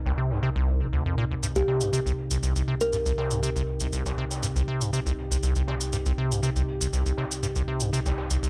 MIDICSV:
0, 0, Header, 1, 5, 480
1, 0, Start_track
1, 0, Key_signature, -3, "minor"
1, 0, Tempo, 500000
1, 1373, Time_signature, 4, 2, 24, 8
1, 8157, End_track
2, 0, Start_track
2, 0, Title_t, "Kalimba"
2, 0, Program_c, 0, 108
2, 1499, Note_on_c, 0, 67, 86
2, 1853, Note_off_c, 0, 67, 0
2, 2699, Note_on_c, 0, 70, 91
2, 3179, Note_off_c, 0, 70, 0
2, 8157, End_track
3, 0, Start_track
3, 0, Title_t, "Analog synth pad"
3, 0, Program_c, 1, 89
3, 0, Note_on_c, 1, 36, 75
3, 0, Note_on_c, 1, 48, 68
3, 0, Note_on_c, 1, 63, 66
3, 0, Note_on_c, 1, 70, 86
3, 1359, Note_off_c, 1, 70, 0
3, 1375, Note_on_c, 1, 67, 82
3, 8157, Note_off_c, 1, 36, 0
3, 8157, Note_off_c, 1, 48, 0
3, 8157, Note_off_c, 1, 63, 0
3, 8157, Note_off_c, 1, 67, 0
3, 8157, End_track
4, 0, Start_track
4, 0, Title_t, "Acid bass"
4, 0, Program_c, 2, 38
4, 58, Note_on_c, 2, 36, 102
4, 121, Note_off_c, 2, 36, 0
4, 172, Note_on_c, 2, 48, 74
4, 298, Note_on_c, 2, 43, 75
4, 312, Note_off_c, 2, 48, 0
4, 392, Note_off_c, 2, 43, 0
4, 411, Note_on_c, 2, 48, 97
4, 481, Note_off_c, 2, 48, 0
4, 536, Note_on_c, 2, 36, 99
4, 777, Note_on_c, 2, 34, 99
4, 792, Note_off_c, 2, 36, 0
4, 841, Note_off_c, 2, 34, 0
4, 892, Note_on_c, 2, 38, 80
4, 996, Note_off_c, 2, 38, 0
4, 1018, Note_on_c, 2, 41, 75
4, 1112, Note_off_c, 2, 41, 0
4, 1131, Note_on_c, 2, 46, 95
4, 1201, Note_off_c, 2, 46, 0
4, 1258, Note_on_c, 2, 38, 79
4, 1296, Note_off_c, 2, 38, 0
4, 1372, Note_on_c, 2, 43, 81
4, 1414, Note_off_c, 2, 43, 0
4, 1497, Note_on_c, 2, 36, 99
4, 1561, Note_off_c, 2, 36, 0
4, 1613, Note_on_c, 2, 48, 74
4, 1738, Note_on_c, 2, 43, 74
4, 1752, Note_off_c, 2, 48, 0
4, 1832, Note_off_c, 2, 43, 0
4, 1852, Note_on_c, 2, 48, 94
4, 1921, Note_off_c, 2, 48, 0
4, 1977, Note_on_c, 2, 36, 102
4, 2041, Note_off_c, 2, 36, 0
4, 2219, Note_on_c, 2, 36, 74
4, 2281, Note_off_c, 2, 36, 0
4, 2332, Note_on_c, 2, 36, 85
4, 2436, Note_off_c, 2, 36, 0
4, 2458, Note_on_c, 2, 36, 75
4, 2521, Note_off_c, 2, 36, 0
4, 2571, Note_on_c, 2, 48, 73
4, 2641, Note_off_c, 2, 48, 0
4, 2811, Note_on_c, 2, 43, 80
4, 2853, Note_off_c, 2, 43, 0
4, 2938, Note_on_c, 2, 36, 100
4, 3001, Note_off_c, 2, 36, 0
4, 3052, Note_on_c, 2, 48, 71
4, 3178, Note_on_c, 2, 43, 75
4, 3192, Note_off_c, 2, 48, 0
4, 3272, Note_off_c, 2, 43, 0
4, 3291, Note_on_c, 2, 48, 101
4, 3361, Note_off_c, 2, 48, 0
4, 3416, Note_on_c, 2, 36, 100
4, 3480, Note_off_c, 2, 36, 0
4, 3657, Note_on_c, 2, 36, 73
4, 3721, Note_off_c, 2, 36, 0
4, 3771, Note_on_c, 2, 36, 83
4, 3875, Note_off_c, 2, 36, 0
4, 3896, Note_on_c, 2, 36, 75
4, 3960, Note_off_c, 2, 36, 0
4, 4011, Note_on_c, 2, 48, 76
4, 4081, Note_off_c, 2, 48, 0
4, 4251, Note_on_c, 2, 43, 79
4, 4293, Note_off_c, 2, 43, 0
4, 4377, Note_on_c, 2, 36, 102
4, 4440, Note_off_c, 2, 36, 0
4, 4492, Note_on_c, 2, 48, 73
4, 4618, Note_on_c, 2, 43, 72
4, 4632, Note_off_c, 2, 48, 0
4, 4712, Note_off_c, 2, 43, 0
4, 4732, Note_on_c, 2, 48, 96
4, 4801, Note_off_c, 2, 48, 0
4, 4858, Note_on_c, 2, 36, 98
4, 4921, Note_off_c, 2, 36, 0
4, 5098, Note_on_c, 2, 36, 75
4, 5161, Note_off_c, 2, 36, 0
4, 5213, Note_on_c, 2, 36, 80
4, 5317, Note_off_c, 2, 36, 0
4, 5339, Note_on_c, 2, 36, 75
4, 5401, Note_off_c, 2, 36, 0
4, 5453, Note_on_c, 2, 48, 75
4, 5522, Note_off_c, 2, 48, 0
4, 5692, Note_on_c, 2, 43, 78
4, 5734, Note_off_c, 2, 43, 0
4, 5817, Note_on_c, 2, 36, 101
4, 5881, Note_off_c, 2, 36, 0
4, 5932, Note_on_c, 2, 48, 76
4, 6058, Note_on_c, 2, 43, 74
4, 6072, Note_off_c, 2, 48, 0
4, 6152, Note_off_c, 2, 43, 0
4, 6172, Note_on_c, 2, 48, 98
4, 6241, Note_off_c, 2, 48, 0
4, 6298, Note_on_c, 2, 36, 95
4, 6361, Note_off_c, 2, 36, 0
4, 6539, Note_on_c, 2, 36, 70
4, 6601, Note_off_c, 2, 36, 0
4, 6653, Note_on_c, 2, 36, 77
4, 6757, Note_off_c, 2, 36, 0
4, 6779, Note_on_c, 2, 36, 74
4, 6842, Note_off_c, 2, 36, 0
4, 6892, Note_on_c, 2, 48, 75
4, 6962, Note_off_c, 2, 48, 0
4, 7132, Note_on_c, 2, 43, 81
4, 7174, Note_off_c, 2, 43, 0
4, 7257, Note_on_c, 2, 36, 96
4, 7321, Note_off_c, 2, 36, 0
4, 7372, Note_on_c, 2, 48, 77
4, 7498, Note_on_c, 2, 43, 75
4, 7512, Note_off_c, 2, 48, 0
4, 7592, Note_off_c, 2, 43, 0
4, 7613, Note_on_c, 2, 48, 100
4, 7682, Note_off_c, 2, 48, 0
4, 7737, Note_on_c, 2, 36, 99
4, 7801, Note_off_c, 2, 36, 0
4, 7977, Note_on_c, 2, 36, 72
4, 8041, Note_off_c, 2, 36, 0
4, 8091, Note_on_c, 2, 36, 77
4, 8157, Note_off_c, 2, 36, 0
4, 8157, End_track
5, 0, Start_track
5, 0, Title_t, "Drums"
5, 61, Note_on_c, 9, 38, 44
5, 157, Note_off_c, 9, 38, 0
5, 170, Note_on_c, 9, 42, 58
5, 266, Note_off_c, 9, 42, 0
5, 300, Note_on_c, 9, 38, 42
5, 396, Note_off_c, 9, 38, 0
5, 410, Note_on_c, 9, 42, 78
5, 506, Note_off_c, 9, 42, 0
5, 649, Note_on_c, 9, 42, 64
5, 745, Note_off_c, 9, 42, 0
5, 894, Note_on_c, 9, 42, 76
5, 990, Note_off_c, 9, 42, 0
5, 1133, Note_on_c, 9, 42, 68
5, 1229, Note_off_c, 9, 42, 0
5, 1369, Note_on_c, 9, 42, 75
5, 1374, Note_on_c, 9, 69, 64
5, 1465, Note_off_c, 9, 42, 0
5, 1470, Note_off_c, 9, 69, 0
5, 1493, Note_on_c, 9, 69, 33
5, 1589, Note_off_c, 9, 69, 0
5, 1612, Note_on_c, 9, 42, 66
5, 1615, Note_on_c, 9, 38, 53
5, 1708, Note_off_c, 9, 42, 0
5, 1711, Note_off_c, 9, 38, 0
5, 1734, Note_on_c, 9, 69, 64
5, 1830, Note_off_c, 9, 69, 0
5, 1856, Note_on_c, 9, 42, 83
5, 1856, Note_on_c, 9, 69, 68
5, 1952, Note_off_c, 9, 42, 0
5, 1952, Note_off_c, 9, 69, 0
5, 1982, Note_on_c, 9, 69, 36
5, 2078, Note_off_c, 9, 69, 0
5, 2094, Note_on_c, 9, 42, 61
5, 2190, Note_off_c, 9, 42, 0
5, 2214, Note_on_c, 9, 69, 76
5, 2310, Note_off_c, 9, 69, 0
5, 2333, Note_on_c, 9, 69, 61
5, 2334, Note_on_c, 9, 42, 85
5, 2429, Note_off_c, 9, 69, 0
5, 2430, Note_off_c, 9, 42, 0
5, 2457, Note_on_c, 9, 69, 42
5, 2553, Note_off_c, 9, 69, 0
5, 2575, Note_on_c, 9, 42, 55
5, 2671, Note_off_c, 9, 42, 0
5, 2695, Note_on_c, 9, 69, 70
5, 2791, Note_off_c, 9, 69, 0
5, 2809, Note_on_c, 9, 69, 60
5, 2813, Note_on_c, 9, 42, 79
5, 2905, Note_off_c, 9, 69, 0
5, 2909, Note_off_c, 9, 42, 0
5, 2936, Note_on_c, 9, 69, 39
5, 3032, Note_off_c, 9, 69, 0
5, 3054, Note_on_c, 9, 38, 48
5, 3058, Note_on_c, 9, 42, 67
5, 3150, Note_off_c, 9, 38, 0
5, 3154, Note_off_c, 9, 42, 0
5, 3175, Note_on_c, 9, 69, 70
5, 3271, Note_off_c, 9, 69, 0
5, 3292, Note_on_c, 9, 42, 83
5, 3295, Note_on_c, 9, 69, 64
5, 3388, Note_off_c, 9, 42, 0
5, 3391, Note_off_c, 9, 69, 0
5, 3420, Note_on_c, 9, 69, 38
5, 3516, Note_off_c, 9, 69, 0
5, 3518, Note_on_c, 9, 42, 61
5, 3614, Note_off_c, 9, 42, 0
5, 3647, Note_on_c, 9, 69, 75
5, 3743, Note_off_c, 9, 69, 0
5, 3770, Note_on_c, 9, 42, 85
5, 3770, Note_on_c, 9, 69, 60
5, 3866, Note_off_c, 9, 42, 0
5, 3866, Note_off_c, 9, 69, 0
5, 3898, Note_on_c, 9, 69, 35
5, 3900, Note_on_c, 9, 38, 44
5, 3994, Note_off_c, 9, 69, 0
5, 3996, Note_off_c, 9, 38, 0
5, 4016, Note_on_c, 9, 42, 70
5, 4112, Note_off_c, 9, 42, 0
5, 4137, Note_on_c, 9, 38, 48
5, 4137, Note_on_c, 9, 69, 65
5, 4233, Note_off_c, 9, 38, 0
5, 4233, Note_off_c, 9, 69, 0
5, 4252, Note_on_c, 9, 42, 80
5, 4252, Note_on_c, 9, 69, 58
5, 4348, Note_off_c, 9, 42, 0
5, 4348, Note_off_c, 9, 69, 0
5, 4378, Note_on_c, 9, 69, 36
5, 4474, Note_off_c, 9, 69, 0
5, 4492, Note_on_c, 9, 42, 58
5, 4588, Note_off_c, 9, 42, 0
5, 4619, Note_on_c, 9, 69, 66
5, 4715, Note_off_c, 9, 69, 0
5, 4731, Note_on_c, 9, 42, 87
5, 4736, Note_on_c, 9, 69, 58
5, 4827, Note_off_c, 9, 42, 0
5, 4832, Note_off_c, 9, 69, 0
5, 4862, Note_on_c, 9, 69, 38
5, 4958, Note_off_c, 9, 69, 0
5, 4976, Note_on_c, 9, 42, 65
5, 5072, Note_off_c, 9, 42, 0
5, 5104, Note_on_c, 9, 69, 68
5, 5200, Note_off_c, 9, 69, 0
5, 5213, Note_on_c, 9, 42, 89
5, 5213, Note_on_c, 9, 69, 63
5, 5309, Note_off_c, 9, 42, 0
5, 5309, Note_off_c, 9, 69, 0
5, 5333, Note_on_c, 9, 69, 37
5, 5337, Note_on_c, 9, 42, 38
5, 5429, Note_off_c, 9, 69, 0
5, 5433, Note_off_c, 9, 42, 0
5, 5449, Note_on_c, 9, 38, 48
5, 5449, Note_on_c, 9, 42, 64
5, 5545, Note_off_c, 9, 38, 0
5, 5545, Note_off_c, 9, 42, 0
5, 5573, Note_on_c, 9, 69, 69
5, 5669, Note_off_c, 9, 69, 0
5, 5689, Note_on_c, 9, 69, 64
5, 5694, Note_on_c, 9, 42, 83
5, 5785, Note_off_c, 9, 69, 0
5, 5790, Note_off_c, 9, 42, 0
5, 5815, Note_on_c, 9, 69, 35
5, 5911, Note_off_c, 9, 69, 0
5, 5932, Note_on_c, 9, 42, 63
5, 6028, Note_off_c, 9, 42, 0
5, 6063, Note_on_c, 9, 69, 72
5, 6159, Note_off_c, 9, 69, 0
5, 6165, Note_on_c, 9, 42, 84
5, 6174, Note_on_c, 9, 69, 59
5, 6261, Note_off_c, 9, 42, 0
5, 6270, Note_off_c, 9, 69, 0
5, 6298, Note_on_c, 9, 69, 34
5, 6394, Note_off_c, 9, 69, 0
5, 6414, Note_on_c, 9, 42, 64
5, 6510, Note_off_c, 9, 42, 0
5, 6539, Note_on_c, 9, 69, 77
5, 6635, Note_off_c, 9, 69, 0
5, 6653, Note_on_c, 9, 42, 89
5, 6655, Note_on_c, 9, 69, 59
5, 6749, Note_off_c, 9, 42, 0
5, 6751, Note_off_c, 9, 69, 0
5, 6777, Note_on_c, 9, 69, 39
5, 6873, Note_off_c, 9, 69, 0
5, 6888, Note_on_c, 9, 38, 43
5, 6897, Note_on_c, 9, 42, 63
5, 6984, Note_off_c, 9, 38, 0
5, 6993, Note_off_c, 9, 42, 0
5, 7021, Note_on_c, 9, 69, 71
5, 7117, Note_off_c, 9, 69, 0
5, 7134, Note_on_c, 9, 42, 86
5, 7134, Note_on_c, 9, 69, 62
5, 7230, Note_off_c, 9, 42, 0
5, 7230, Note_off_c, 9, 69, 0
5, 7252, Note_on_c, 9, 69, 34
5, 7348, Note_off_c, 9, 69, 0
5, 7369, Note_on_c, 9, 42, 66
5, 7465, Note_off_c, 9, 42, 0
5, 7489, Note_on_c, 9, 69, 66
5, 7585, Note_off_c, 9, 69, 0
5, 7607, Note_on_c, 9, 42, 82
5, 7618, Note_on_c, 9, 69, 60
5, 7703, Note_off_c, 9, 42, 0
5, 7714, Note_off_c, 9, 69, 0
5, 7736, Note_on_c, 9, 69, 32
5, 7741, Note_on_c, 9, 38, 47
5, 7832, Note_off_c, 9, 69, 0
5, 7837, Note_off_c, 9, 38, 0
5, 7849, Note_on_c, 9, 42, 71
5, 7851, Note_on_c, 9, 38, 98
5, 7945, Note_off_c, 9, 42, 0
5, 7947, Note_off_c, 9, 38, 0
5, 7971, Note_on_c, 9, 69, 72
5, 8067, Note_off_c, 9, 69, 0
5, 8096, Note_on_c, 9, 69, 55
5, 8099, Note_on_c, 9, 42, 56
5, 8157, Note_off_c, 9, 42, 0
5, 8157, Note_off_c, 9, 69, 0
5, 8157, End_track
0, 0, End_of_file